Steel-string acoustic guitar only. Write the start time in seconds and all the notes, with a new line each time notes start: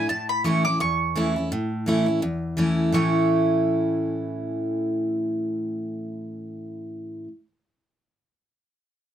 Already playing: D4
0.10 A2
0.44 E3 A3 C#4 E4
0.65 C#4 E4
0.80 E2
1.16 E3 A3 C#4 E4
1.36 C#4 E4
1.52 A2
1.86 E3 A3 C#4 E4
2.06 C#4 E4
2.22 E2
2.57 E3 A3 C#4 E4
2.92 A2 E3 A3 C#4 E4